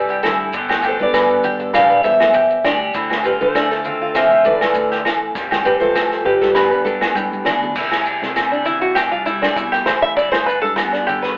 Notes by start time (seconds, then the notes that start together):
Already playing: C2 G2 E3 G3 D4 E4 B4 D5
0.09 G4, maracas
0.23 G2 E4 A4, snare, low conga, low agogo, maracas
0.53 G1 G2 D3 B3 D4 G4, kick, maracas
0.69 G4, snare, low agogo, maracas
0.83 D4 G4 A4, maracas
0.87 A3 C5
0.99 G2 B3 B4 D5, high conga, maracas
1.14 D3 B4, kick, snare, low agogo, maracas
1.29 maracas
1.44 G4, low conga, maracas
1.59 A4, maracas
1.73 D4 G4 B4 D5 F5, kick, snare, low agogo, maracas
1.90 G1 B4, maracas
2.03 G2 B3 A4 C5 E5, high conga, maracas
2.20 snare, low agogo
2.34 G1 G4, kick, maracas
2.50 maracas
2.64 D2 D4 G4, snare, low conga, low agogo, maracas
2.94 D2 D3 C4 E4, kick, maracas
3.10 snare, low agogo, maracas
3.24 G3 F4 G4 B4, maracas
3.41 D3 A3 A4 C5, high conga, maracas
3.55 A3 D4, kick, snare, low agogo, maracas
3.71 A4, snare, maracas
3.84 C4 F4, low conga, maracas
4.02 F4
4.15 C4 F4 C5 E5, kick, snare, low agogo, maracas
4.31 D2 G4, maracas
4.45 A2 A3 B4 D5, high conga, maracas
4.61 A4, snare, high conga, low agogo
4.74 D2 D3, kick, maracas
4.91 G4, snare, maracas
5.05 A1 A4, snare, low agogo, maracas
5.35 F2 G3, kick, snare, maracas
5.51 G4, snare, high conga, low conga, low agogo, maracas
5.64 G3 C4 G4 B4, maracas
5.80 F3 A3 A4 C5, high conga, maracas
5.95 A4, kick, snare, low agogo, maracas
6.11 snare, maracas
6.24 F2 G3 G4 B4, low conga
6.41 A4, snare, high conga, maracas
6.55 G2 B3 B4, kick, snare, low agogo, maracas
6.71 G2 B4, maracas
6.85 D4 A4, high conga, maracas
7.01 snare, high conga, low agogo, maracas
7.15 G2 A2 G4, kick, high conga, maracas
7.32 high conga, maracas
7.45 D2 B2 D4, snare, low conga, low agogo, maracas
7.62 low conga, maracas
7.76 C3 E4, kick, snare, crash, maracas
7.91 snare, low agogo, maracas
8.06 D4, maracas
8.22 C3, snare, high conga, maracas
8.36 G3, kick, snare, low agogo, maracas
8.52 D4, maracas
8.65 E3 E4, low conga, maracas
8.81 F#4, maracas
8.95 D4 G4, kick, snare, low agogo, maracas
9.11 C2 F4, maracas
9.26 G3 E4, high conga, maracas
9.42 D4, snare, high conga, low agogo
9.56 C2 B2 E4, kick, maracas
9.72 G4, snare, maracas
9.86 A1 A2 C5, snare, low conga, low agogo, maracas
10.02 E5
10.16 G1 G2 E4 D5, kick, maracas
10.32 C5, snare, low agogo, maracas
10.46 D4 B4, maracas
10.62 G2 A4, high conga, maracas
10.76 B3, muted five-string banjo stroke, kick, snare, low agogo, maracas
10.93 D4, snare, maracas
11.07 D3 G4, low conga, maracas
11.22 B4, snare, maracas